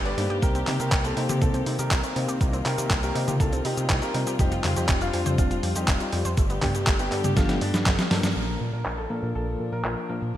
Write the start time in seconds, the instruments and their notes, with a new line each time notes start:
Already playing: analog synth bass G1, string section D3 G3 A3 B3 G4, tine electric piano G3 B3 D4 A4
0.05 synth arpeggio sound B3, grand piano B4 D5, closed hi-hat
0.17 analog synth bass G2, tine electric piano A#3 D#4 G4 C5, synth arpeggio sound D4, open hi-hat
0.30 analog synth bass G2, synth arpeggio sound G4, closed hi-hat
0.42 analog synth bass C2, string section D#3 A#3 C4, synth arpeggio sound A#3, grand piano G4 A#4, kick, closed hi-hat, cabasa
0.55 synth arpeggio sound C4, closed hi-hat, cabasa
0.67 analog synth bass C3, synth arpeggio sound D#4, clap, open hi-hat, high tom
0.80 analog synth bass C3, synth arpeggio sound G4, grand piano G4 A#4, closed hi-hat, cabasa
0.92 analog synth bass C2, synth arpeggio sound A#3, kick, clap, closed hi-hat, cabasa
1.04 grand piano C4 A4, synth arpeggio sound C4, closed hi-hat, cabasa
1.17 analog synth bass C3, tine electric piano A#3 D#4 G4 C5, synth arpeggio sound D#4, open hi-hat
1.29 analog synth bass C3, synth arpeggio sound G4, closed hi-hat, high tom, cabasa
1.42 analog synth bass C2, synth arpeggio sound A#3, grand piano C4 A4, kick, closed hi-hat, cabasa
1.54 synth arpeggio sound C4, closed hi-hat, cabasa
1.66 analog synth bass C3, synth arpeggio sound D#4, open hi-hat
1.79 analog synth bass C3, synth arpeggio sound G4, grand piano G4 A#4, closed hi-hat, cabasa
1.91 analog synth bass C2, synth arpeggio sound A#3, kick, clap, closed hi-hat, cabasa
2.04 synth arpeggio sound C4, closed hi-hat, cabasa
2.16 analog synth bass C3, tine electric piano A#3 D#4 G4 C5, synth arpeggio sound D#4, open hi-hat
2.28 analog synth bass C3, synth arpeggio sound G4, closed hi-hat, cabasa
2.41 analog synth bass C2, synth arpeggio sound A#3, string section F4, kick, closed hi-hat, cabasa
2.53 synth arpeggio sound C4, closed hi-hat, cabasa
2.65 analog synth bass C3, synth arpeggio sound D#4, grand piano G4 A#4, clap, open hi-hat
2.78 analog synth bass C3, synth arpeggio sound G4, closed hi-hat, cabasa
2.90 analog synth bass C2, synth arpeggio sound A#3, kick, clap, closed hi-hat, cabasa
3.03 synth arpeggio sound C4, grand piano G4 A#4, closed hi-hat, cabasa
3.15 analog synth bass C3, tine electric piano A#3 D#4 G4 C5, synth arpeggio sound D#4, open hi-hat
3.28 analog synth bass C3, synth arpeggio sound G4, closed hi-hat, high tom, cabasa
3.40 analog synth bass C2, synth arpeggio sound A#3, grand piano C4 A4, kick, closed hi-hat, cabasa
3.53 synth arpeggio sound C4, closed hi-hat, cabasa
3.65 analog synth bass C3, synth arpeggio sound D#4, grand piano D#4 G4, open hi-hat
3.77 analog synth bass C3, synth arpeggio sound G4, closed hi-hat, cabasa
3.90 analog synth bass C2, synth arpeggio sound A#3, kick, clap, closed hi-hat, cabasa
4.02 synth arpeggio sound C4, grand piano G4 A#4, closed hi-hat, cabasa
4.14 analog synth bass C3, tine electric piano G3 C4 F4 C5, synth arpeggio sound D#4, open hi-hat
4.27 analog synth bass C3, synth arpeggio sound G4, closed hi-hat, cabasa
4.39 analog synth bass F1, string section G3, synth arpeggio sound C4, grand piano D#4 G4, kick, closed hi-hat, cabasa
4.52 synth arpeggio sound F4, closed hi-hat, cabasa
4.64 analog synth bass F2, synth arpeggio sound G4, clap, open hi-hat, high tom
4.76 analog synth bass F2, grand piano D#4 G4, synth arpeggio sound C5, closed hi-hat, cabasa
4.89 analog synth bass F1, synth arpeggio sound C4, kick, clap, closed hi-hat, cabasa
5.01 grand piano D4 F4, synth arpeggio sound F4, closed hi-hat, cabasa
5.13 analog synth bass F2, tine electric piano G3 C4 F4 C5, synth arpeggio sound G4, open hi-hat
5.26 analog synth bass F2, synth arpeggio sound C5, closed hi-hat, high tom, cabasa
5.38 analog synth bass F1, synth arpeggio sound C4, grand piano D4 F4, kick, closed hi-hat, cabasa
5.51 synth arpeggio sound F4, closed hi-hat, cabasa
5.63 analog synth bass F2, synth arpeggio sound G4, open hi-hat
5.75 analog synth bass F2, grand piano D#4 G4, synth arpeggio sound C5, closed hi-hat, cabasa
5.88 analog synth bass F1, synth arpeggio sound C4, kick, clap, closed hi-hat, cabasa
6.00 synth arpeggio sound F4, closed hi-hat, cabasa
6.12 analog synth bass F2, tine electric piano G3 C4 F4 C5, synth arpeggio sound G4, open hi-hat
6.25 analog synth bass F2, synth arpeggio sound C5, closed hi-hat, cabasa
6.37 analog synth bass G1, string section D3 A3 B3 G4, synth arpeggio sound A3, kick, closed hi-hat, cabasa
6.50 synth arpeggio sound B3, closed hi-hat, cabasa
6.62 analog synth bass G2, grand piano B3 G4, synth arpeggio sound D4, kick, clap, open hi-hat, high tom
6.75 analog synth bass G2, synth arpeggio sound G4, closed hi-hat, cabasa
6.87 analog synth bass G1, synth arpeggio sound A3, kick, clap, closed hi-hat, cabasa
6.99 synth arpeggio sound B3, grand piano B3 G4, closed hi-hat, cabasa
7.12 analog synth bass G2, tine electric piano G3 B3 D4 A4, synth arpeggio sound D4, clap, open hi-hat
7.24 analog synth bass G2, synth arpeggio sound G4, closed hi-hat, high tom, cabasa
7.37 analog synth bass G1, synth arpeggio sound A3, grand piano D4 F4, kick, snare, closed hi-hat, cabasa
7.49 synth arpeggio sound B3, snare, closed hi-hat, cabasa
7.61 analog synth bass G2, grand piano B3 D4, synth arpeggio sound B3, open hi-hat
7.74 analog synth bass G2, synth arpeggio sound B3, snare, closed hi-hat, cabasa
7.86 analog synth bass G1, synth arpeggio sound B3, kick, snare, clap, closed hi-hat, cabasa
7.99 grand piano G3 B3, synth arpeggio sound B3, snare, closed hi-hat, cabasa
8.11 analog synth bass G2, tine electric piano F3 A#3 D4 A#4, synth arpeggio sound A4, snare, open hi-hat
8.23 analog synth bass G2, synth arpeggio sound D4, snare, closed hi-hat, cabasa
8.36 analog synth bass A#1, string section F3 A#3 D4, grand piano A#4, crash, cabasa
8.48 cabasa
8.61 analog synth bass A#2
8.73 analog synth bass A#2, grand piano A#4, cabasa
8.85 analog synth bass A#1, clap, cabasa
8.98 grand piano A4, cabasa
9.10 analog synth bass A#2, tine electric piano F3 A#3 D4 A#4
9.23 analog synth bass A#2, cabasa
9.35 analog synth bass A#1, grand piano A4, cabasa
9.47 cabasa
9.60 analog synth bass A#2
9.72 analog synth bass A#2, grand piano A#4, cabasa
9.85 analog synth bass A#1, clap, cabasa
9.97 cabasa
10.09 analog synth bass A#2, tine electric piano F3 A#3 D4 A#4
10.22 analog synth bass A#2, cabasa
10.34 cabasa